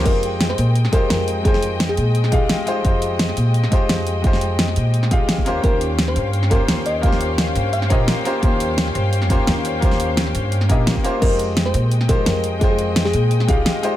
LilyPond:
<<
  \new Staff \with { instrumentName = "String section" } { \time 4/4 \key f \minor \tempo 4 = 172 <aes ees'' g''>1~ | <aes ees'' g''>1~ | <aes ees'' g''>1~ | <aes ees'' g''>2.~ <aes ees'' g''>8 <des' c'' f'' g''>8~ |
<des' c'' f'' g''>1~ | <des' c'' f'' g''>1~ | <des' c'' f'' g''>1~ | <des' c'' f'' g''>1 |
<aes ees'' g''>1~ | <aes ees'' g''>1 | }
  \new Staff \with { instrumentName = "FM electric piano" } { \time 4/4 \key f \minor bes'8 r8. c''8 r8. bes'8 bes'8 r8 | aes'16 aes'16 r8. aes'4. r4 r16 | r1 | r1 |
bes'8 r8. c''8 r8. bes'8 r8 ees''8 | f''8 r4. f''8 c''4 r8 | r1 | r1 |
bes'8 r8. c''8 r8. bes'8 bes'8 r8 | aes'16 aes'16 r8. aes'4. r4 r16 | }
  \new Staff \with { instrumentName = "Grand piano" } { \time 4/4 \key f \minor <aes ees' f' g' c''>2~ <aes ees' f' g' c''>8 <aes ees' f' g' c''>8 r4 | <aes ees' f' c'' g''>2~ <aes ees' f' c'' g''>8 <aes ees' f' g' f''>4 <aes ees' f' g' c''>8 | <aes ees' f' g' c''>2~ <aes ees' f' g' c''>8 <aes ees' f' g' c''>8 r4 | <aes ees' f' g' c''>2~ <aes ees' f' g' c''>8 <aes ees' f' g' f''>4 <bes des' f' g' c''>8 |
<bes des' f' g' c''>2~ <bes des' f' g' c''>8 <bes des' f' g' c''>8 r4 | <bes des' f' g' c''>2~ <bes des' f' g' c''>8 <bes des' f' g' ees''>4 <bes des' f' g' c''>8 | <bes des' f' g' c''>2~ <bes des' f' g' c''>8 <bes des' f' g' c''>8 r4 | <bes des' f' g' c''>2~ <bes des' f' g' c''>8 <bes des' f' g' ees''>4 <bes des' f' g' c''>8 |
<aes ees' f' g' c''>2~ <aes ees' f' g' c''>8 <aes ees' f' g' c''>8 r4 | <aes ees' f' c'' g''>2~ <aes ees' f' c'' g''>8 <aes ees' f' g' f''>4 <aes ees' f' g' c''>8 | }
  \new Staff \with { instrumentName = "Upright bass" } { \clef bass \time 4/4 \key f \minor f,4. bes,4 f,8 f,4~ | f,4. bes,4 c,8 r4 | f,4. bes,4 f,8 f,4~ | f,4. bes,4 c,8 r16 ees,16 ees,8 |
ees,4. g,4 ees,8 ees,4~ | ees,4. g,4 bes,,8 r4 | ees,4. g,4 ees,8 ees,4~ | ees,4. g,4 bes,,8 r4 |
f,4. bes,4 f,8 f,4~ | f,4. bes,4 c,8 r4 | }
  \new DrumStaff \with { instrumentName = "Drums" } \drummode { \time 4/4 <cymc hh bd>8 hh8 <hh sn>16 sn16 hh8 hh16 sn16 <hh bd>8 <hh sn>8 hh8 | <hh bd>16 sn16 hh8 <hh sn>16 sn16 hh8 hh16 sn16 <hh bd>8 <hh sn>8 hh8 | <hh bd>8 hh8 <hh sn>16 sn16 hh8 hh16 sn16 <hh bd>8 <hh sn>8 hh8 | <hh bd>16 sn16 hh8 <hh sn>16 sn16 hh8 hh16 sn16 <hh bd>8 <hh sn>16 bd16 hh8 |
<hh bd>8 hh8 <hh sn>16 sn16 hh8 hh16 sn16 <hh bd>8 <hh sn>8 hh8 | <hh bd>16 sn16 hh8 <hh sn>16 sn16 hh8 hh16 sn16 <hh bd>8 <hh sn>8 hh8 | <hh bd>8 hh8 <hh sn>16 sn16 hh8 hh16 sn16 <hh bd>8 <hh sn>8 hh8 | <hh bd>16 sn16 hh8 <hh sn>16 sn16 hh8 hh16 sn16 <hh bd>8 <hh sn>16 bd16 hh8 |
<cymc hh bd>8 hh8 <hh sn>16 sn16 hh8 hh16 sn16 <hh bd>8 <hh sn>8 hh8 | <hh bd>8 hh8 <hh sn>16 sn16 hh8 hh16 sn16 <hh bd>8 <hh sn>8 hh8 | }
>>